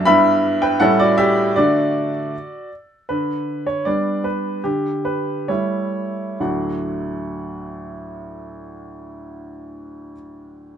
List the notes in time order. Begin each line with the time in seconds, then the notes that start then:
0.05 G2 G3 B3 E4 E5 B5
0.62 B4 G5
0.80 A2 G3 A3 C#4 A4 F#5
1.00 F#4 D5
1.18 G4 E5
1.56 D3 A3 D4 F#4 D5
3.09 D3 B4
3.67 C#5
3.85 G3 B3 D4 D5
4.24 B4
4.64 D3 G4
5.05 B4
5.48 G3 A3 E4 C#5
6.40 D2 A2 F#3 A3 D4 F#4 F#5